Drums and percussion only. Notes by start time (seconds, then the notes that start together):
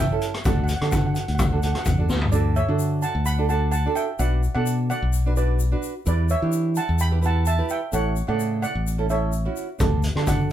0.21 closed hi-hat, shaker
0.34 cross-stick, closed hi-hat
0.45 kick, closed hi-hat, shaker
0.68 closed hi-hat, shaker
0.81 cross-stick, closed hi-hat
0.92 kick, closed hi-hat, shaker
1.15 closed hi-hat, shaker
1.28 closed hi-hat
1.39 kick, cross-stick, closed hi-hat, shaker
1.63 closed hi-hat, shaker
1.75 cross-stick, closed hi-hat
1.85 kick, closed hi-hat, shaker
2.09 snare, shaker
2.21 floor tom
2.33 shaker
2.56 shaker
2.79 shaker
3.02 shaker
3.26 shaker
3.49 shaker
3.72 shaker
3.96 shaker
4.19 shaker
4.43 shaker
4.66 shaker
4.91 shaker
5.13 shaker
5.36 shaker
5.60 shaker
5.83 shaker
6.06 shaker
6.29 shaker
6.52 shaker
6.76 shaker
6.99 shaker
7.23 shaker
7.46 shaker
7.69 shaker
7.93 shaker
8.16 shaker
8.40 shaker
8.63 shaker
8.87 shaker
9.10 shaker
9.32 shaker
9.56 shaker
9.80 kick, closed hi-hat, shaker
10.03 closed hi-hat, shaker
10.17 cross-stick, closed hi-hat
10.27 kick, closed hi-hat, shaker